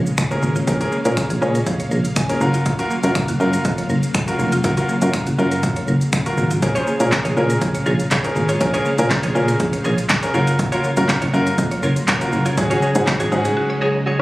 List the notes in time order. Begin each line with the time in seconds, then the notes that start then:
Already playing: C#3 G#3 A#3 F5
0.06 shaker
0.18 G#3, finger snap, kick, shaker
0.31 C#4 G#4 A#4, shaker
0.43 G#1 A#3, shaker
0.56 F4, shaker
0.67 A#1 G#3 C#4 G#4 A#4, kick, closed hi-hat, shaker
0.80 C#4 G#4 A#4, closed hi-hat, shaker
0.92 A#3, shaker
1.05 A#2 C#4 G#4 A#4, closed hi-hat, shaker
1.17 C#4, finger snap, kick, closed hi-hat, shaker
1.30 A#1 G#4, closed hi-hat, shaker
1.42 A#2 C#4 F4 G#4 C#5 D#5, shaker
1.55 A#4, closed hi-hat, shaker
1.66 A#1 G#4 F5, kick, closed hi-hat, shaker
1.80 C#5, closed hi-hat, shaker
1.91 A#1 A#4, shaker
2.05 closed hi-hat, shaker
2.16 G#3 G#5, finger snap, kick, closed hi-hat, shaker
2.29 C#4 G#4 A#4, closed hi-hat, shaker
2.41 F#1 C#3 F#3 A#3 F4 F#4 A#4 A#5, shaker
2.54 F4, closed hi-hat, shaker
2.66 F#3, kick, closed hi-hat, shaker
2.79 C#4 F4 F#4 A#4, closed hi-hat, shaker
2.90 A#3, shaker
3.03 F#2 F4 F#4 A#4, closed hi-hat, shaker
3.15 C#4, finger snap, kick, closed hi-hat, shaker
3.28 F#1 F#4, closed hi-hat, shaker
3.40 F#2 F4 F#4 A#4, shaker
3.53 A#4, closed hi-hat, shaker
3.65 F2 F#4, kick, closed hi-hat, shaker
3.78 C#5, closed hi-hat, shaker
3.89 F#1 A#4, shaker
4.03 closed hi-hat, shaker
4.14 F#3, finger snap, kick, closed hi-hat, shaker
4.27 C#4 F4 F#4 A#4, closed hi-hat, shaker
4.39 F1 A#3, shaker
4.52 F4, closed hi-hat, shaker
4.64 F#1 F#3 F4 F#4 A#4, kick, closed hi-hat, shaker
4.77 C#4 F4 F#4 A#4, closed hi-hat, shaker
4.89 A#3, shaker
5.02 F#2 F4 F#4 A#4, closed hi-hat, shaker
5.14 C#4, finger snap, kick, closed hi-hat, shaker
5.27 F#1 F#4, closed hi-hat, shaker
5.38 F#2 F4 F#4 A#4, shaker
5.51 A#4, closed hi-hat, shaker
5.63 F#1 F#4, kick, closed hi-hat, shaker
5.76 C#5, closed hi-hat, shaker
5.88 F#1 A#4, shaker
6.01 closed hi-hat, shaker
6.13 F#3, finger snap, kick, closed hi-hat, shaker
6.26 C#4 F4 F#4 A#4, closed hi-hat, shaker
6.37 G#1 A#3, shaker
6.51 F4, closed hi-hat, shaker
6.62 A#1 G#3 C#4 G#4 A#4 F5, muted clean electric guitar stroke, kick, closed hi-hat, shaker
6.75 C#4 F4 G#4 C5 C#5, closed hi-hat, shaker
6.87 A#3 F4 G#4 C#5, shaker
7.00 A#2 C#4 G#4 A#4, muted clean electric guitar stroke, closed hi-hat, shaker
7.12 C#4, muted clean electric guitar stroke, kick, snare, clap, closed hi-hat, shaker
7.25 A#1 F4 G#4 C#5, closed hi-hat, shaker
7.37 A#2 C#4 F4 G#4 A#4, shaker
7.50 A#4, muted clean electric guitar stroke, closed hi-hat, shaker
7.61 A#1 G#4, kick, closed hi-hat, shaker
7.74 C#5, muted clean electric guitar stroke, closed hi-hat, shaker
7.86 A#1 F4 G#4 A#4 C#5, shaker
7.99 muted clean electric guitar stroke, closed hi-hat, shaker
8.11 G#3 F4 G#4 C#5, kick, snare, clap, closed hi-hat, shaker
8.24 C#4 G#4 A#4, muted clean electric guitar stroke, closed hi-hat, shaker
8.36 G#1 A#3, muted clean electric guitar stroke, shaker
8.49 F4 G#4 C#5, closed hi-hat, shaker
8.60 A#1 G#3 C#4 G#4 A#4 C5, muted clean electric guitar stroke, kick, closed hi-hat, shaker
8.74 C#4 F4 G#4 A#4 C#5, closed hi-hat, shaker
8.85 A#3 F4 G#4 C#5, shaker
8.98 A#2 C#4 G#4 A#4, muted clean electric guitar stroke, closed hi-hat, shaker
9.10 C#4, muted clean electric guitar stroke, kick, snare, clap, closed hi-hat, shaker
9.23 A#1 F4 G#4 C#5, closed hi-hat, shaker
9.35 A#2 C#4 F4 G#4 A#4, muted clean electric guitar stroke, shaker
9.48 A#4, muted clean electric guitar stroke, closed hi-hat, shaker
9.60 A#1 G#4, kick, closed hi-hat, shaker
9.73 C#5, muted clean electric guitar stroke, closed hi-hat, shaker
9.84 A#1 F4 G#4 A#4 C#5, shaker
9.98 muted clean electric guitar stroke, closed hi-hat, shaker
10.09 G#3, kick, snare, clap, closed hi-hat, shaker
10.22 C#4 G#4 A#4, muted clean electric guitar stroke, closed hi-hat, shaker
10.34 F#1 C#3 F#3 A#3 F4 F#4 A#4 C#5, shaker
10.47 F4, muted clean electric guitar stroke, closed hi-hat, shaker
10.59 F#3, muted clean electric guitar stroke, kick, closed hi-hat, shaker
10.72 C#4 F4 F#4 A#4 C#5, closed hi-hat, shaker
10.84 A#3 F4 A#4 C#5, shaker
10.97 F#2 F4 F#4 A#4, muted clean electric guitar stroke, closed hi-hat, shaker
11.09 C#4, muted clean electric guitar stroke, kick, snare, clap, closed hi-hat, shaker
11.22 F#1 F4 F#4 A#4 C#5, closed hi-hat, shaker
11.33 F#2 F4 F#4 A#4, shaker
11.47 A#4, muted clean electric guitar stroke, closed hi-hat, shaker
11.58 F2 F#4, kick, closed hi-hat, shaker
11.71 C#5, muted clean electric guitar stroke, closed hi-hat, shaker
11.83 F#1 F4 A#4 C#5, shaker
11.96 muted clean electric guitar stroke, closed hi-hat, shaker
12.08 F#3 F4 A#4 C#5, kick, snare, clap, closed hi-hat, shaker
12.21 C#4 F4 F#4 A#4, muted clean electric guitar stroke, closed hi-hat, shaker
12.33 F#1 A#3, muted clean electric guitar stroke, shaker
12.46 F4 A#4 C#5, closed hi-hat, shaker
12.57 G#1 F#3 G#3 C#4 D#4 F#4 G#4, kick, closed hi-hat, shaker
12.70 C#4 F#4 G#4 C#5, closed hi-hat, shaker
12.82 G#3 F#4 G#4 C#5, shaker
12.95 G#2 C#4 F#4 G#4, muted clean electric guitar stroke, closed hi-hat, shaker
13.07 C#4, muted clean electric guitar stroke, kick, snare, clap, closed hi-hat, shaker
13.20 G#1 F#4 G#4 C#5, closed hi-hat, shaker
13.32 G#2 C#4 D#4 F#4 G#4, shaker
13.45 G#4, muted clean electric guitar stroke, closed hi-hat, shaker
13.57 F#4
13.70 C#5, muted clean electric guitar stroke
13.81 F#4 G#4 C#5
13.94 muted clean electric guitar stroke
14.06 F#3 F#4 G#4 C#5